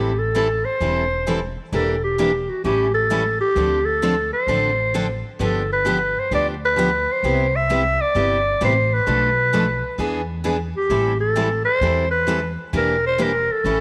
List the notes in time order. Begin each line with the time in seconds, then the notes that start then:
Already playing: A1 E3 G3 C4 E4 G4 A4
0.19 A4
0.35 E3 G3 C4 E4 A4
0.65 C5
0.80 E1 E3 G3 C4 E4 A4
1.27 E3 G3 C4 E4 A4
1.72 E1 E3 G3 A#3 D4 E4 G4 A4 A#4
2.04 G4
2.18 E3 G3 A#3 D4 E4 G4 A#4
2.49 F#4
2.64 A1 E3 G3 C#4 E4 G4 A4
2.94 A4
3.10 E3 G3 C#4 E4 A4
3.41 G4
3.56 D2 D3 F3 C4 D4 A4
3.85 A4
4.02 D3 F3 C4 D4 A4
4.33 C5
4.47 A1 D3 F3 C4 D4 A4
4.94 D3 F3 C4 D4 A4
5.39 G1 D3 F3 B3 D4 G4 A4
5.73 B4
5.86 D3 F3 B3 D4 G4
6.19 C5
6.31 D2 D3 F3 B3 D4 G4 D5
6.65 B4
6.78 D3 F3 B3 D4 G4
7.12 C5
7.23 C2 C3 G3 B3 E4 G4
7.56 E5
7.70 C3 G3 B3 E4 G4
8.01 D5
8.15 G1 C3 G3 B3 E4 G4
8.61 A1 C3 G3 B3 E4 G4 C5
8.94 B4
9.07 B1 B2 F3 A3 D4 A4 B4
9.53 B2 F3 A3 D4 A4 B4
9.98 E2 E3 B3 D4 G#4 B4
10.44 E3 B3 D4 G#4 B4
10.76 G4
10.90 A1 E3 G3 C4 E4 A4
11.20 A4
11.36 E3 G3 C4 E4 A4
11.65 C5
11.81 E2 E3 G3 C4 E4 A4
12.11 B4
12.28 E3 G3 C4 E4 A4
12.73 E1 E3 G3 A#3 D4 E4 G4 A#4
13.06 C5
13.18 E3 G3 A#3 D4 E4 G4 A#4
13.52 A4
13.64 A1 E3 G3 C#4 E4 A4